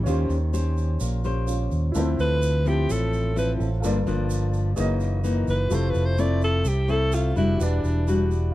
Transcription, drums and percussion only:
0, 0, Header, 1, 2, 480
1, 0, Start_track
1, 0, Tempo, 471217
1, 63, Time_signature, 4, 2, 24, 8
1, 8701, End_track
2, 0, Start_track
2, 0, Title_t, "Drums"
2, 66, Note_on_c, 9, 82, 63
2, 168, Note_off_c, 9, 82, 0
2, 303, Note_on_c, 9, 82, 24
2, 405, Note_off_c, 9, 82, 0
2, 548, Note_on_c, 9, 82, 57
2, 650, Note_off_c, 9, 82, 0
2, 787, Note_on_c, 9, 82, 27
2, 889, Note_off_c, 9, 82, 0
2, 1020, Note_on_c, 9, 82, 65
2, 1122, Note_off_c, 9, 82, 0
2, 1263, Note_on_c, 9, 82, 24
2, 1365, Note_off_c, 9, 82, 0
2, 1504, Note_on_c, 9, 82, 60
2, 1605, Note_off_c, 9, 82, 0
2, 1744, Note_on_c, 9, 82, 24
2, 1846, Note_off_c, 9, 82, 0
2, 1983, Note_on_c, 9, 82, 62
2, 2085, Note_off_c, 9, 82, 0
2, 2233, Note_on_c, 9, 82, 26
2, 2335, Note_off_c, 9, 82, 0
2, 2466, Note_on_c, 9, 82, 63
2, 2568, Note_off_c, 9, 82, 0
2, 2711, Note_on_c, 9, 82, 26
2, 2813, Note_off_c, 9, 82, 0
2, 2951, Note_on_c, 9, 82, 66
2, 3053, Note_off_c, 9, 82, 0
2, 3189, Note_on_c, 9, 82, 27
2, 3291, Note_off_c, 9, 82, 0
2, 3434, Note_on_c, 9, 82, 60
2, 3536, Note_off_c, 9, 82, 0
2, 3676, Note_on_c, 9, 82, 24
2, 3778, Note_off_c, 9, 82, 0
2, 3908, Note_on_c, 9, 82, 65
2, 4010, Note_off_c, 9, 82, 0
2, 4146, Note_on_c, 9, 82, 23
2, 4248, Note_off_c, 9, 82, 0
2, 4380, Note_on_c, 9, 82, 63
2, 4482, Note_off_c, 9, 82, 0
2, 4619, Note_on_c, 9, 82, 25
2, 4721, Note_off_c, 9, 82, 0
2, 4856, Note_on_c, 9, 82, 61
2, 4958, Note_off_c, 9, 82, 0
2, 5094, Note_on_c, 9, 82, 25
2, 5196, Note_off_c, 9, 82, 0
2, 5340, Note_on_c, 9, 82, 62
2, 5441, Note_off_c, 9, 82, 0
2, 5578, Note_on_c, 9, 82, 24
2, 5680, Note_off_c, 9, 82, 0
2, 5812, Note_on_c, 9, 82, 59
2, 5914, Note_off_c, 9, 82, 0
2, 6053, Note_on_c, 9, 82, 25
2, 6155, Note_off_c, 9, 82, 0
2, 6296, Note_on_c, 9, 82, 59
2, 6397, Note_off_c, 9, 82, 0
2, 6537, Note_on_c, 9, 82, 27
2, 6639, Note_off_c, 9, 82, 0
2, 6773, Note_on_c, 9, 82, 60
2, 6875, Note_off_c, 9, 82, 0
2, 7017, Note_on_c, 9, 82, 25
2, 7119, Note_off_c, 9, 82, 0
2, 7253, Note_on_c, 9, 82, 61
2, 7355, Note_off_c, 9, 82, 0
2, 7500, Note_on_c, 9, 82, 26
2, 7602, Note_off_c, 9, 82, 0
2, 7746, Note_on_c, 9, 82, 67
2, 7848, Note_off_c, 9, 82, 0
2, 7989, Note_on_c, 9, 82, 26
2, 8091, Note_off_c, 9, 82, 0
2, 8227, Note_on_c, 9, 82, 58
2, 8329, Note_off_c, 9, 82, 0
2, 8467, Note_on_c, 9, 82, 27
2, 8568, Note_off_c, 9, 82, 0
2, 8701, End_track
0, 0, End_of_file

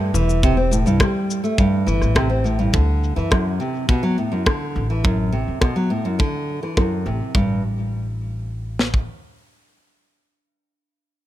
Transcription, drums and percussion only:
0, 0, Header, 1, 2, 480
1, 0, Start_track
1, 0, Tempo, 576923
1, 354, Time_signature, 4, 2, 24, 8
1, 9372, End_track
2, 0, Start_track
2, 0, Title_t, "Drums"
2, 124, Note_on_c, 9, 82, 65
2, 207, Note_off_c, 9, 82, 0
2, 244, Note_on_c, 9, 82, 39
2, 327, Note_off_c, 9, 82, 0
2, 360, Note_on_c, 9, 36, 110
2, 364, Note_on_c, 9, 82, 32
2, 443, Note_off_c, 9, 36, 0
2, 447, Note_off_c, 9, 82, 0
2, 604, Note_on_c, 9, 82, 80
2, 687, Note_off_c, 9, 82, 0
2, 723, Note_on_c, 9, 82, 46
2, 806, Note_off_c, 9, 82, 0
2, 832, Note_on_c, 9, 36, 96
2, 836, Note_on_c, 9, 37, 95
2, 843, Note_on_c, 9, 82, 29
2, 915, Note_off_c, 9, 36, 0
2, 919, Note_off_c, 9, 37, 0
2, 926, Note_off_c, 9, 82, 0
2, 1086, Note_on_c, 9, 82, 76
2, 1169, Note_off_c, 9, 82, 0
2, 1204, Note_on_c, 9, 82, 40
2, 1287, Note_off_c, 9, 82, 0
2, 1317, Note_on_c, 9, 36, 102
2, 1322, Note_on_c, 9, 82, 30
2, 1400, Note_off_c, 9, 36, 0
2, 1405, Note_off_c, 9, 82, 0
2, 1563, Note_on_c, 9, 82, 71
2, 1646, Note_off_c, 9, 82, 0
2, 1677, Note_on_c, 9, 37, 28
2, 1684, Note_on_c, 9, 82, 43
2, 1760, Note_off_c, 9, 37, 0
2, 1768, Note_off_c, 9, 82, 0
2, 1796, Note_on_c, 9, 36, 92
2, 1798, Note_on_c, 9, 37, 103
2, 1805, Note_on_c, 9, 82, 34
2, 1879, Note_off_c, 9, 36, 0
2, 1881, Note_off_c, 9, 37, 0
2, 1889, Note_off_c, 9, 82, 0
2, 2045, Note_on_c, 9, 82, 69
2, 2128, Note_off_c, 9, 82, 0
2, 2165, Note_on_c, 9, 82, 38
2, 2248, Note_off_c, 9, 82, 0
2, 2277, Note_on_c, 9, 36, 106
2, 2361, Note_off_c, 9, 36, 0
2, 2526, Note_on_c, 9, 82, 69
2, 2609, Note_off_c, 9, 82, 0
2, 2647, Note_on_c, 9, 82, 44
2, 2731, Note_off_c, 9, 82, 0
2, 2759, Note_on_c, 9, 37, 94
2, 2760, Note_on_c, 9, 36, 93
2, 2842, Note_off_c, 9, 37, 0
2, 2843, Note_off_c, 9, 36, 0
2, 3006, Note_on_c, 9, 82, 73
2, 3089, Note_off_c, 9, 82, 0
2, 3126, Note_on_c, 9, 82, 39
2, 3209, Note_off_c, 9, 82, 0
2, 3235, Note_on_c, 9, 36, 103
2, 3318, Note_off_c, 9, 36, 0
2, 3483, Note_on_c, 9, 82, 70
2, 3566, Note_off_c, 9, 82, 0
2, 3602, Note_on_c, 9, 82, 42
2, 3685, Note_off_c, 9, 82, 0
2, 3714, Note_on_c, 9, 36, 89
2, 3717, Note_on_c, 9, 37, 98
2, 3798, Note_off_c, 9, 36, 0
2, 3800, Note_off_c, 9, 37, 0
2, 3966, Note_on_c, 9, 82, 68
2, 4049, Note_off_c, 9, 82, 0
2, 4146, Note_on_c, 9, 82, 40
2, 4199, Note_on_c, 9, 36, 98
2, 4229, Note_off_c, 9, 82, 0
2, 4282, Note_off_c, 9, 36, 0
2, 4445, Note_on_c, 9, 82, 69
2, 4463, Note_off_c, 9, 82, 0
2, 4463, Note_on_c, 9, 82, 50
2, 4482, Note_off_c, 9, 82, 0
2, 4482, Note_on_c, 9, 82, 42
2, 4540, Note_off_c, 9, 82, 0
2, 4540, Note_on_c, 9, 82, 26
2, 4559, Note_off_c, 9, 82, 0
2, 4559, Note_on_c, 9, 82, 42
2, 4643, Note_off_c, 9, 82, 0
2, 4671, Note_on_c, 9, 37, 83
2, 4673, Note_on_c, 9, 36, 103
2, 4754, Note_off_c, 9, 37, 0
2, 4756, Note_off_c, 9, 36, 0
2, 5156, Note_on_c, 9, 36, 85
2, 5240, Note_off_c, 9, 36, 0
2, 5403, Note_on_c, 9, 82, 68
2, 5486, Note_off_c, 9, 82, 0
2, 5518, Note_on_c, 9, 37, 24
2, 5601, Note_off_c, 9, 37, 0
2, 5633, Note_on_c, 9, 36, 86
2, 5636, Note_on_c, 9, 37, 87
2, 5717, Note_off_c, 9, 36, 0
2, 5719, Note_off_c, 9, 37, 0
2, 6113, Note_on_c, 9, 36, 90
2, 6196, Note_off_c, 9, 36, 0
2, 7316, Note_on_c, 9, 38, 57
2, 7400, Note_off_c, 9, 38, 0
2, 7436, Note_on_c, 9, 36, 61
2, 7519, Note_off_c, 9, 36, 0
2, 9372, End_track
0, 0, End_of_file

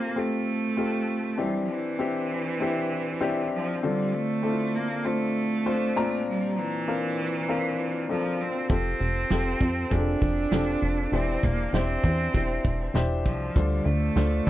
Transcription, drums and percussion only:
0, 0, Header, 1, 2, 480
1, 0, Start_track
1, 0, Key_signature, -1, "major"
1, 0, Tempo, 607903
1, 1101, Time_signature, 4, 2, 24, 8
1, 11448, End_track
2, 0, Start_track
2, 0, Title_t, "Drums"
2, 6868, Note_on_c, 9, 36, 94
2, 6869, Note_on_c, 9, 42, 74
2, 6947, Note_off_c, 9, 36, 0
2, 6948, Note_off_c, 9, 42, 0
2, 7108, Note_on_c, 9, 42, 68
2, 7187, Note_off_c, 9, 42, 0
2, 7344, Note_on_c, 9, 42, 79
2, 7347, Note_on_c, 9, 38, 90
2, 7423, Note_off_c, 9, 42, 0
2, 7425, Note_off_c, 9, 38, 0
2, 7585, Note_on_c, 9, 36, 81
2, 7589, Note_on_c, 9, 42, 65
2, 7664, Note_off_c, 9, 36, 0
2, 7668, Note_off_c, 9, 42, 0
2, 7826, Note_on_c, 9, 42, 83
2, 7828, Note_on_c, 9, 36, 77
2, 7905, Note_off_c, 9, 42, 0
2, 7907, Note_off_c, 9, 36, 0
2, 8067, Note_on_c, 9, 42, 59
2, 8068, Note_on_c, 9, 36, 74
2, 8146, Note_off_c, 9, 42, 0
2, 8147, Note_off_c, 9, 36, 0
2, 8304, Note_on_c, 9, 42, 68
2, 8306, Note_on_c, 9, 38, 101
2, 8383, Note_off_c, 9, 42, 0
2, 8385, Note_off_c, 9, 38, 0
2, 8552, Note_on_c, 9, 42, 62
2, 8631, Note_off_c, 9, 42, 0
2, 8789, Note_on_c, 9, 42, 80
2, 8868, Note_off_c, 9, 42, 0
2, 9026, Note_on_c, 9, 42, 66
2, 9028, Note_on_c, 9, 36, 75
2, 9105, Note_off_c, 9, 42, 0
2, 9107, Note_off_c, 9, 36, 0
2, 9267, Note_on_c, 9, 42, 76
2, 9269, Note_on_c, 9, 38, 98
2, 9346, Note_off_c, 9, 42, 0
2, 9348, Note_off_c, 9, 38, 0
2, 9504, Note_on_c, 9, 36, 75
2, 9509, Note_on_c, 9, 42, 65
2, 9583, Note_off_c, 9, 36, 0
2, 9588, Note_off_c, 9, 42, 0
2, 9744, Note_on_c, 9, 42, 73
2, 9746, Note_on_c, 9, 36, 76
2, 9823, Note_off_c, 9, 42, 0
2, 9825, Note_off_c, 9, 36, 0
2, 9985, Note_on_c, 9, 42, 61
2, 9986, Note_on_c, 9, 36, 81
2, 10064, Note_off_c, 9, 42, 0
2, 10065, Note_off_c, 9, 36, 0
2, 10224, Note_on_c, 9, 42, 67
2, 10226, Note_on_c, 9, 38, 88
2, 10303, Note_off_c, 9, 42, 0
2, 10305, Note_off_c, 9, 38, 0
2, 10467, Note_on_c, 9, 36, 78
2, 10470, Note_on_c, 9, 42, 70
2, 10546, Note_off_c, 9, 36, 0
2, 10548, Note_off_c, 9, 42, 0
2, 10706, Note_on_c, 9, 36, 106
2, 10706, Note_on_c, 9, 42, 71
2, 10785, Note_off_c, 9, 36, 0
2, 10785, Note_off_c, 9, 42, 0
2, 10945, Note_on_c, 9, 42, 57
2, 11024, Note_off_c, 9, 42, 0
2, 11184, Note_on_c, 9, 42, 78
2, 11186, Note_on_c, 9, 38, 100
2, 11263, Note_off_c, 9, 42, 0
2, 11265, Note_off_c, 9, 38, 0
2, 11448, End_track
0, 0, End_of_file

